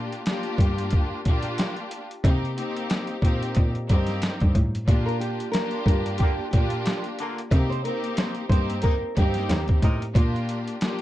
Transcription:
Already playing: string section A#3 D4 F4 G4
0.12 closed hi-hat
0.26 string section A#3 D4 F4 G4, snare, closed hi-hat
0.43 closed hi-hat
0.58 cello G2, kick, closed hi-hat
0.78 closed hi-hat
0.91 kick, closed hi-hat
1.25 cello A#2, string section A#3 D4 F4 G4, kick, closed hi-hat
1.43 closed hi-hat
1.58 snare, closed hi-hat
1.76 closed hi-hat
1.91 closed hi-hat
2.11 closed hi-hat
2.24 cello C3, string section A#3 C4 D#4 G4, kick, closed hi-hat
2.45 closed hi-hat
2.55 string section A#3 C4 D#4 G4, closed hi-hat
2.77 closed hi-hat
2.90 snare, closed hi-hat
3.07 closed hi-hat
3.21 cello A#2, string section A#3 C4 D#4 G4, kick, closed hi-hat
3.43 closed hi-hat
3.55 cello A#2, kick, closed hi-hat
3.75 closed hi-hat
3.89 cello G2, string section A#3 C4 D#4 G4, kick, closed hi-hat
4.07 snare, closed hi-hat
4.22 snare, closed hi-hat
4.40 cello G2, kick, closed hi-hat
4.55 cello A2, kick, closed hi-hat
4.75 closed hi-hat
4.86 cello A#2, string section A#3 D4 F4 G4, kick, closed hi-hat
5.06 nylon-string guitar A#4, closed hi-hat
5.20 nylon-string guitar G4, closed hi-hat
5.40 closed hi-hat
5.52 string section A#3 D4 F4, nylon-string guitar A#4, snare, closed hi-hat
5.56 string section G4
5.71 closed hi-hat
5.86 cello G2, nylon-string guitar A#4, kick, closed hi-hat
6.06 closed hi-hat
6.18 horn section D3 A#3 F4, nylon-string guitar G4, kick, closed hi-hat
6.51 cello A#2, string section A#3 D4 F4, nylon-string guitar G4, kick, closed hi-hat
6.55 string section G4
6.70 closed hi-hat
6.86 snare, closed hi-hat
7.04 closed hi-hat
7.19 horn section D3 A#3 F4, closed hi-hat
7.38 closed hi-hat
7.51 cello C3, string section A#3 C4 D#4 G4, kick, closed hi-hat
7.69 nylon-string guitar C5, closed hi-hat
7.83 string section A#3 C4 D#4 G4, nylon-string guitar A#4, closed hi-hat
8.04 closed hi-hat
8.17 nylon-string guitar C5, snare, closed hi-hat
8.35 closed hi-hat
8.48 cello G2, string section A#3 C4 D#4 G4, nylon-string guitar C5, kick, closed hi-hat
8.70 closed hi-hat
8.82 horn section C3 A#3 D#4, nylon-string guitar A#4, kick, closed hi-hat
9.16 cello G2, string section A#3 C4 D#4 G4, nylon-string guitar G4, kick, closed hi-hat
9.34 snare, closed hi-hat
9.49 cello D#2, snare, closed hi-hat
9.68 kick, closed hi-hat
9.82 cello A2, horn section C3 D#4 A#4, kick, closed hi-hat
10.02 closed hi-hat
10.14 cello A#2, string section A#3 D4 F4 G4, kick, closed hi-hat
10.36 closed hi-hat
10.49 closed hi-hat
10.68 closed hi-hat
10.81 string section A#3 D4 F4 G4, snare, closed hi-hat

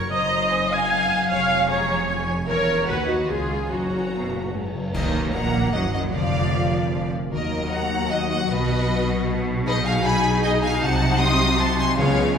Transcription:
Already playing: harp C#3 A#3 C#4, violin section C#6
0.11 double bass section F#1, harp F#2, cello section F#2, violin section C5 A#5, viola section D#5
0.31 harp G#3
0.51 harp C4, violin section G#5
0.72 harp F#3, violin section F5, viola section G#5
0.91 harp G#3, violin section F#5
1.12 harp F#3
1.30 double bass section F1, cello section F2, harp F2, violin section C#5 G#5, viola section F5
1.50 harp G#3
1.69 harp C#4, violin section G#4 A#5, viola section C#5
1.89 harp F3
2.09 harp G#3, violin section G#5
2.29 harp F3
2.48 double bass section E1, cello section E2, harp E3, violin section A#4 E5, viola section C#5
2.68 harp C#4
2.87 cello section D#2, double bass section D#2, harp D#3, violin section F#4 F#5, viola section B4
3.08 harp D#4 B4, violin section D#4, viola section F#4
3.28 cello section C#2, double bass section C#2, harp C#3, violin section F4 G#5, viola section G#4
3.50 harp F4 C#5
3.70 double bass section F#1, harp F#2, cello section F#2, violin section C#4 A#5, viola section F#4
3.91 harp A#3
4.12 cello section B2, harp F#4
4.32 cello section A#2, harp C#3
4.52 cello section G#2, harp A#3
4.74 cello section F#2, harp C#3
4.94 cello section D#2, double bass section D#2, harp D#3, viola section D#3, violin section A#4 D#5, concert bass drum, crash
5.03 harp A#3
5.14 harp F#4
5.23 harp D#5
5.32 double bass section A#1, cello section A#2, viola section A#3, harp A#4, violin section F#5 A#5
5.43 harp F#5
5.53 harp D#6
5.63 harp F#5
5.73 double bass section F#1, cello section F#2, viola section F#3, violin section D#5 F#5
5.83 harp D#5
5.92 double bass section F#1, cello section F#2, viola section F#3, harp F#4, violin section D#5 F#5
6.04 harp A#3
6.12 double bass section F1, cello section F2, harp D3, viola section F3, violin section D5 F5
6.23 harp G#3
6.33 harp F4
6.43 harp A#4
6.53 harp G#4
6.73 harp A#5
6.83 harp F5
6.93 harp G#4
7.02 harp A#4
7.12 harp F4
7.22 harp G#3
7.31 double bass section D#2, cello section D#2, harp D#3, viola section A#3 F#4, violin section A#4 D#5
7.42 harp F#3
7.52 harp F#4
7.62 harp A#4
7.72 harp F#4, violin section F#5 A#5
7.82 harp F#5
7.92 harp A#5
8.02 harp F#5
8.09 harp F#4, violin section D#5 F#5
8.21 harp A#4
8.30 violin section D#5 F#5
8.41 harp F#3
8.49 double bass section B1, cello section B2, harp B2, viola section B3, violin section B4 D#5
8.60 harp F#3
8.70 harp F#4
8.89 harp F#4
8.98 harp F#5
9.18 harp F#5
9.28 harp F#4
9.37 harp B4
9.47 harp F#4
9.57 harp F#3
9.66 harp B2, viola section D#4 G#4, violin section B4 D#5
9.77 harp G#3
9.85 harp D#4, violin section F5 G#5
9.95 harp G#4
10.04 harp D#4, violin section G#5 B5
10.15 harp D#5
10.35 harp D#5
10.43 harp G#4, violin section D#5 G#5
10.54 harp D#4
10.62 harp G#3, violin section F5 G#5
10.73 harp B3
10.81 double bass section C2, harp C3, cello section C3, viola section F#4, violin section F#5 A5
10.92 harp F#3
11.02 harp D#4
11.12 harp C5
11.21 harp F#4, violin section C6 D#6
11.30 harp D#5
11.49 harp D#5
11.59 harp F#4, violin section A5 C6
11.69 harp C5
11.78 harp D#4, violin section G#5 C6
11.89 harp F#3
11.98 double bass section C#2, harp C#3, timpani C#3, cello section C#3, viola section B3 G#4, violin section C#5 F5
12.08 harp C#4
12.17 harp B4

